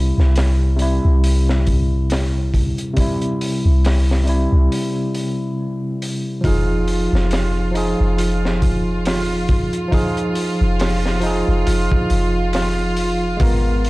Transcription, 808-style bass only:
0, 0, Header, 1, 2, 480
1, 0, Start_track
1, 0, Tempo, 869565
1, 1637, Time_signature, 4, 2, 24, 8
1, 7672, End_track
2, 0, Start_track
2, 0, Title_t, "808-style bass"
2, 0, Program_c, 0, 38
2, 0, Note_on_c, 0, 36, 94
2, 69, Note_off_c, 0, 36, 0
2, 98, Note_on_c, 0, 36, 88
2, 550, Note_off_c, 0, 36, 0
2, 578, Note_on_c, 0, 36, 90
2, 1510, Note_off_c, 0, 36, 0
2, 2016, Note_on_c, 0, 36, 90
2, 2469, Note_off_c, 0, 36, 0
2, 2496, Note_on_c, 0, 36, 94
2, 2586, Note_off_c, 0, 36, 0
2, 3556, Note_on_c, 0, 29, 91
2, 3908, Note_off_c, 0, 29, 0
2, 3933, Note_on_c, 0, 29, 89
2, 4388, Note_off_c, 0, 29, 0
2, 4417, Note_on_c, 0, 29, 87
2, 5349, Note_off_c, 0, 29, 0
2, 5856, Note_on_c, 0, 29, 86
2, 6309, Note_off_c, 0, 29, 0
2, 6337, Note_on_c, 0, 29, 98
2, 6426, Note_off_c, 0, 29, 0
2, 6441, Note_on_c, 0, 29, 80
2, 6560, Note_off_c, 0, 29, 0
2, 6681, Note_on_c, 0, 29, 83
2, 7380, Note_off_c, 0, 29, 0
2, 7398, Note_on_c, 0, 32, 92
2, 7672, Note_off_c, 0, 32, 0
2, 7672, End_track
0, 0, End_of_file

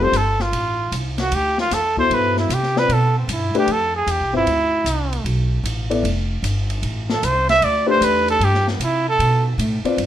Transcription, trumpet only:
0, 0, Header, 1, 2, 480
1, 0, Start_track
1, 0, Tempo, 393701
1, 1609, Time_signature, 4, 2, 24, 8
1, 12266, End_track
2, 0, Start_track
2, 0, Title_t, "Trumpet"
2, 0, Program_c, 0, 56
2, 42, Note_on_c, 0, 72, 95
2, 203, Note_on_c, 0, 69, 82
2, 221, Note_off_c, 0, 72, 0
2, 508, Note_on_c, 0, 65, 85
2, 526, Note_off_c, 0, 69, 0
2, 1141, Note_off_c, 0, 65, 0
2, 1466, Note_on_c, 0, 66, 89
2, 1645, Note_on_c, 0, 67, 92
2, 1664, Note_off_c, 0, 66, 0
2, 1943, Note_off_c, 0, 67, 0
2, 1950, Note_on_c, 0, 65, 88
2, 2118, Note_on_c, 0, 69, 83
2, 2136, Note_off_c, 0, 65, 0
2, 2419, Note_off_c, 0, 69, 0
2, 2428, Note_on_c, 0, 72, 105
2, 2611, Note_on_c, 0, 71, 93
2, 2629, Note_off_c, 0, 72, 0
2, 2905, Note_off_c, 0, 71, 0
2, 2914, Note_on_c, 0, 64, 69
2, 3089, Note_on_c, 0, 67, 86
2, 3107, Note_off_c, 0, 64, 0
2, 3395, Note_on_c, 0, 71, 103
2, 3413, Note_off_c, 0, 67, 0
2, 3575, Note_on_c, 0, 69, 90
2, 3593, Note_off_c, 0, 71, 0
2, 3867, Note_off_c, 0, 69, 0
2, 3883, Note_on_c, 0, 60, 53
2, 4042, Note_on_c, 0, 64, 71
2, 4060, Note_off_c, 0, 60, 0
2, 4340, Note_off_c, 0, 64, 0
2, 4367, Note_on_c, 0, 67, 96
2, 4532, Note_on_c, 0, 69, 97
2, 4551, Note_off_c, 0, 67, 0
2, 4820, Note_off_c, 0, 69, 0
2, 4827, Note_on_c, 0, 68, 88
2, 5007, Note_on_c, 0, 67, 79
2, 5026, Note_off_c, 0, 68, 0
2, 5303, Note_off_c, 0, 67, 0
2, 5321, Note_on_c, 0, 64, 93
2, 6379, Note_off_c, 0, 64, 0
2, 8678, Note_on_c, 0, 69, 85
2, 8833, Note_on_c, 0, 72, 96
2, 8851, Note_off_c, 0, 69, 0
2, 9136, Note_off_c, 0, 72, 0
2, 9142, Note_on_c, 0, 76, 122
2, 9312, Note_on_c, 0, 74, 99
2, 9331, Note_off_c, 0, 76, 0
2, 9616, Note_off_c, 0, 74, 0
2, 9623, Note_on_c, 0, 72, 104
2, 9802, Note_on_c, 0, 71, 93
2, 9821, Note_off_c, 0, 72, 0
2, 10101, Note_off_c, 0, 71, 0
2, 10122, Note_on_c, 0, 69, 97
2, 10294, Note_on_c, 0, 67, 84
2, 10313, Note_off_c, 0, 69, 0
2, 10588, Note_off_c, 0, 67, 0
2, 10601, Note_on_c, 0, 59, 46
2, 10763, Note_on_c, 0, 64, 84
2, 10782, Note_off_c, 0, 59, 0
2, 11062, Note_off_c, 0, 64, 0
2, 11084, Note_on_c, 0, 69, 99
2, 11513, Note_off_c, 0, 69, 0
2, 12266, End_track
0, 0, End_of_file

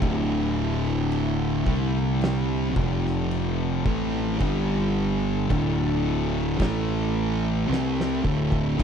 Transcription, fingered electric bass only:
0, 0, Header, 1, 2, 480
1, 0, Start_track
1, 0, Key_signature, -1, "minor"
1, 0, Tempo, 1096892
1, 7, Time_signature, 4, 2, 24, 8
1, 3864, End_track
2, 0, Start_track
2, 0, Title_t, "Fingered electric bass"
2, 0, Program_c, 0, 33
2, 9, Note_on_c, 0, 26, 95
2, 710, Note_off_c, 0, 26, 0
2, 727, Note_on_c, 0, 36, 101
2, 1189, Note_off_c, 0, 36, 0
2, 1210, Note_on_c, 0, 29, 89
2, 1670, Note_off_c, 0, 29, 0
2, 1687, Note_on_c, 0, 33, 93
2, 1910, Note_off_c, 0, 33, 0
2, 1927, Note_on_c, 0, 31, 96
2, 2389, Note_off_c, 0, 31, 0
2, 2408, Note_on_c, 0, 26, 99
2, 2869, Note_off_c, 0, 26, 0
2, 2887, Note_on_c, 0, 33, 92
2, 3348, Note_off_c, 0, 33, 0
2, 3366, Note_on_c, 0, 36, 102
2, 3589, Note_off_c, 0, 36, 0
2, 3607, Note_on_c, 0, 26, 86
2, 3830, Note_off_c, 0, 26, 0
2, 3846, Note_on_c, 0, 26, 106
2, 3864, Note_off_c, 0, 26, 0
2, 3864, End_track
0, 0, End_of_file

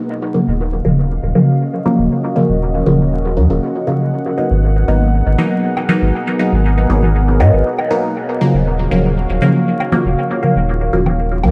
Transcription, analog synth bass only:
0, 0, Header, 1, 2, 480
1, 0, Start_track
1, 0, Tempo, 504202
1, 86, Time_signature, 4, 2, 24, 8
1, 10960, End_track
2, 0, Start_track
2, 0, Title_t, "Analog synth bass"
2, 0, Program_c, 0, 38
2, 453, Note_on_c, 0, 27, 92
2, 770, Note_off_c, 0, 27, 0
2, 806, Note_on_c, 0, 27, 94
2, 1132, Note_off_c, 0, 27, 0
2, 1172, Note_on_c, 0, 27, 90
2, 1263, Note_off_c, 0, 27, 0
2, 1892, Note_on_c, 0, 27, 84
2, 1983, Note_off_c, 0, 27, 0
2, 2372, Note_on_c, 0, 27, 101
2, 2690, Note_off_c, 0, 27, 0
2, 2726, Note_on_c, 0, 27, 97
2, 3206, Note_on_c, 0, 39, 80
2, 3220, Note_off_c, 0, 27, 0
2, 3307, Note_off_c, 0, 39, 0
2, 3332, Note_on_c, 0, 27, 83
2, 3424, Note_off_c, 0, 27, 0
2, 4292, Note_on_c, 0, 32, 100
2, 4610, Note_off_c, 0, 32, 0
2, 4646, Note_on_c, 0, 32, 92
2, 4972, Note_off_c, 0, 32, 0
2, 5012, Note_on_c, 0, 32, 97
2, 5103, Note_off_c, 0, 32, 0
2, 5732, Note_on_c, 0, 32, 90
2, 5823, Note_off_c, 0, 32, 0
2, 6212, Note_on_c, 0, 32, 97
2, 6530, Note_off_c, 0, 32, 0
2, 6566, Note_on_c, 0, 32, 100
2, 7046, Note_on_c, 0, 44, 83
2, 7060, Note_off_c, 0, 32, 0
2, 7147, Note_off_c, 0, 44, 0
2, 7172, Note_on_c, 0, 32, 83
2, 7264, Note_off_c, 0, 32, 0
2, 8132, Note_on_c, 0, 27, 96
2, 8450, Note_off_c, 0, 27, 0
2, 8486, Note_on_c, 0, 27, 90
2, 8812, Note_off_c, 0, 27, 0
2, 8852, Note_on_c, 0, 27, 96
2, 8943, Note_off_c, 0, 27, 0
2, 9572, Note_on_c, 0, 27, 87
2, 9663, Note_off_c, 0, 27, 0
2, 10052, Note_on_c, 0, 27, 99
2, 10370, Note_off_c, 0, 27, 0
2, 10406, Note_on_c, 0, 27, 92
2, 10886, Note_on_c, 0, 39, 82
2, 10900, Note_off_c, 0, 27, 0
2, 10960, Note_off_c, 0, 39, 0
2, 10960, End_track
0, 0, End_of_file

